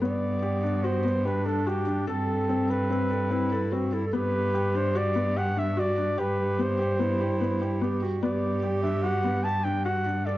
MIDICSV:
0, 0, Header, 1, 5, 480
1, 0, Start_track
1, 0, Key_signature, 1, "major"
1, 0, Tempo, 410116
1, 25, Time_signature, 5, 2, 24, 8
1, 12144, End_track
2, 0, Start_track
2, 0, Title_t, "Flugelhorn"
2, 0, Program_c, 0, 56
2, 32, Note_on_c, 0, 74, 77
2, 983, Note_on_c, 0, 72, 84
2, 1000, Note_off_c, 0, 74, 0
2, 1472, Note_on_c, 0, 71, 78
2, 1489, Note_off_c, 0, 72, 0
2, 1702, Note_on_c, 0, 69, 81
2, 1720, Note_off_c, 0, 71, 0
2, 1959, Note_on_c, 0, 67, 77
2, 1977, Note_off_c, 0, 69, 0
2, 2432, Note_off_c, 0, 67, 0
2, 2439, Note_on_c, 0, 69, 82
2, 3160, Note_on_c, 0, 71, 85
2, 3178, Note_off_c, 0, 69, 0
2, 4598, Note_off_c, 0, 71, 0
2, 4845, Note_on_c, 0, 71, 89
2, 5579, Note_on_c, 0, 72, 90
2, 5596, Note_off_c, 0, 71, 0
2, 5818, Note_on_c, 0, 74, 94
2, 5836, Note_off_c, 0, 72, 0
2, 6289, Note_on_c, 0, 78, 99
2, 6307, Note_off_c, 0, 74, 0
2, 6540, Note_on_c, 0, 76, 92
2, 6558, Note_off_c, 0, 78, 0
2, 6784, Note_on_c, 0, 74, 95
2, 6802, Note_off_c, 0, 76, 0
2, 7251, Note_on_c, 0, 71, 85
2, 7268, Note_off_c, 0, 74, 0
2, 7734, Note_on_c, 0, 72, 83
2, 7752, Note_off_c, 0, 71, 0
2, 9160, Note_off_c, 0, 72, 0
2, 9631, Note_on_c, 0, 74, 76
2, 10302, Note_off_c, 0, 74, 0
2, 10331, Note_on_c, 0, 76, 79
2, 10566, Note_on_c, 0, 78, 88
2, 10583, Note_off_c, 0, 76, 0
2, 11048, Note_on_c, 0, 81, 96
2, 11065, Note_off_c, 0, 78, 0
2, 11283, Note_on_c, 0, 79, 93
2, 11301, Note_off_c, 0, 81, 0
2, 11520, Note_off_c, 0, 79, 0
2, 11527, Note_on_c, 0, 78, 90
2, 12010, Note_on_c, 0, 74, 81
2, 12027, Note_off_c, 0, 78, 0
2, 12144, Note_off_c, 0, 74, 0
2, 12144, End_track
3, 0, Start_track
3, 0, Title_t, "Clarinet"
3, 0, Program_c, 1, 71
3, 31, Note_on_c, 1, 59, 77
3, 1427, Note_off_c, 1, 59, 0
3, 1470, Note_on_c, 1, 62, 82
3, 2427, Note_on_c, 1, 60, 85
3, 2445, Note_off_c, 1, 62, 0
3, 3876, Note_on_c, 1, 64, 90
3, 3894, Note_off_c, 1, 60, 0
3, 4351, Note_on_c, 1, 66, 83
3, 4369, Note_off_c, 1, 64, 0
3, 4601, Note_on_c, 1, 64, 80
3, 4619, Note_off_c, 1, 66, 0
3, 4753, Note_off_c, 1, 64, 0
3, 4760, Note_on_c, 1, 69, 70
3, 4841, Note_on_c, 1, 67, 102
3, 4858, Note_off_c, 1, 69, 0
3, 6441, Note_off_c, 1, 67, 0
3, 6752, Note_on_c, 1, 66, 83
3, 7147, Note_off_c, 1, 66, 0
3, 7147, Note_on_c, 1, 66, 66
3, 7227, Note_on_c, 1, 67, 93
3, 7245, Note_off_c, 1, 66, 0
3, 8188, Note_on_c, 1, 64, 98
3, 8206, Note_off_c, 1, 67, 0
3, 9155, Note_on_c, 1, 67, 89
3, 9172, Note_off_c, 1, 64, 0
3, 9396, Note_on_c, 1, 66, 87
3, 9414, Note_off_c, 1, 67, 0
3, 9625, Note_off_c, 1, 66, 0
3, 9633, Note_on_c, 1, 67, 106
3, 11665, Note_off_c, 1, 67, 0
3, 12023, Note_on_c, 1, 69, 98
3, 12144, Note_off_c, 1, 69, 0
3, 12144, End_track
4, 0, Start_track
4, 0, Title_t, "Felt piano"
4, 0, Program_c, 2, 0
4, 19, Note_on_c, 2, 59, 76
4, 445, Note_off_c, 2, 59, 0
4, 497, Note_on_c, 2, 67, 72
4, 713, Note_off_c, 2, 67, 0
4, 741, Note_on_c, 2, 62, 69
4, 956, Note_off_c, 2, 62, 0
4, 983, Note_on_c, 2, 66, 77
4, 1197, Note_off_c, 2, 66, 0
4, 1224, Note_on_c, 2, 59, 67
4, 1438, Note_off_c, 2, 59, 0
4, 1463, Note_on_c, 2, 67, 72
4, 1678, Note_off_c, 2, 67, 0
4, 1706, Note_on_c, 2, 62, 76
4, 1920, Note_off_c, 2, 62, 0
4, 1951, Note_on_c, 2, 66, 75
4, 2162, Note_off_c, 2, 66, 0
4, 2188, Note_on_c, 2, 62, 65
4, 2401, Note_off_c, 2, 62, 0
4, 2427, Note_on_c, 2, 69, 83
4, 2852, Note_off_c, 2, 69, 0
4, 2915, Note_on_c, 2, 60, 70
4, 3125, Note_off_c, 2, 60, 0
4, 3158, Note_on_c, 2, 69, 70
4, 3367, Note_off_c, 2, 69, 0
4, 3396, Note_on_c, 2, 60, 78
4, 3606, Note_off_c, 2, 60, 0
4, 3633, Note_on_c, 2, 69, 70
4, 3844, Note_off_c, 2, 69, 0
4, 3868, Note_on_c, 2, 60, 81
4, 4081, Note_off_c, 2, 60, 0
4, 4120, Note_on_c, 2, 69, 78
4, 4328, Note_off_c, 2, 69, 0
4, 4354, Note_on_c, 2, 60, 77
4, 4565, Note_off_c, 2, 60, 0
4, 4591, Note_on_c, 2, 69, 68
4, 4803, Note_off_c, 2, 69, 0
4, 4834, Note_on_c, 2, 59, 81
4, 5256, Note_off_c, 2, 59, 0
4, 5316, Note_on_c, 2, 67, 78
4, 5526, Note_off_c, 2, 67, 0
4, 5556, Note_on_c, 2, 62, 73
4, 5766, Note_off_c, 2, 62, 0
4, 5795, Note_on_c, 2, 66, 79
4, 6005, Note_off_c, 2, 66, 0
4, 6033, Note_on_c, 2, 59, 77
4, 6244, Note_off_c, 2, 59, 0
4, 6278, Note_on_c, 2, 67, 83
4, 6487, Note_off_c, 2, 67, 0
4, 6517, Note_on_c, 2, 62, 72
4, 6726, Note_off_c, 2, 62, 0
4, 6754, Note_on_c, 2, 66, 71
4, 6964, Note_off_c, 2, 66, 0
4, 6997, Note_on_c, 2, 62, 67
4, 7206, Note_off_c, 2, 62, 0
4, 7231, Note_on_c, 2, 67, 85
4, 7653, Note_off_c, 2, 67, 0
4, 7709, Note_on_c, 2, 59, 77
4, 7921, Note_off_c, 2, 59, 0
4, 7946, Note_on_c, 2, 67, 74
4, 8159, Note_off_c, 2, 67, 0
4, 8183, Note_on_c, 2, 59, 71
4, 8397, Note_off_c, 2, 59, 0
4, 8430, Note_on_c, 2, 67, 70
4, 8641, Note_off_c, 2, 67, 0
4, 8669, Note_on_c, 2, 59, 73
4, 8880, Note_off_c, 2, 59, 0
4, 8913, Note_on_c, 2, 67, 68
4, 9122, Note_off_c, 2, 67, 0
4, 9144, Note_on_c, 2, 59, 77
4, 9357, Note_off_c, 2, 59, 0
4, 9391, Note_on_c, 2, 67, 64
4, 9600, Note_off_c, 2, 67, 0
4, 9628, Note_on_c, 2, 59, 81
4, 10050, Note_off_c, 2, 59, 0
4, 10102, Note_on_c, 2, 67, 73
4, 10315, Note_off_c, 2, 67, 0
4, 10340, Note_on_c, 2, 62, 74
4, 10554, Note_off_c, 2, 62, 0
4, 10581, Note_on_c, 2, 66, 72
4, 10794, Note_off_c, 2, 66, 0
4, 10818, Note_on_c, 2, 59, 64
4, 11032, Note_off_c, 2, 59, 0
4, 11056, Note_on_c, 2, 67, 80
4, 11271, Note_off_c, 2, 67, 0
4, 11294, Note_on_c, 2, 62, 75
4, 11510, Note_off_c, 2, 62, 0
4, 11535, Note_on_c, 2, 66, 77
4, 11750, Note_off_c, 2, 66, 0
4, 11773, Note_on_c, 2, 62, 69
4, 11989, Note_off_c, 2, 62, 0
4, 12013, Note_on_c, 2, 69, 79
4, 12144, Note_off_c, 2, 69, 0
4, 12144, End_track
5, 0, Start_track
5, 0, Title_t, "Cello"
5, 0, Program_c, 3, 42
5, 17, Note_on_c, 3, 43, 70
5, 2423, Note_off_c, 3, 43, 0
5, 2423, Note_on_c, 3, 43, 74
5, 4833, Note_off_c, 3, 43, 0
5, 4833, Note_on_c, 3, 43, 80
5, 7230, Note_off_c, 3, 43, 0
5, 7230, Note_on_c, 3, 43, 73
5, 9624, Note_off_c, 3, 43, 0
5, 9624, Note_on_c, 3, 43, 76
5, 12013, Note_off_c, 3, 43, 0
5, 12013, Note_on_c, 3, 43, 76
5, 12144, Note_off_c, 3, 43, 0
5, 12144, End_track
0, 0, End_of_file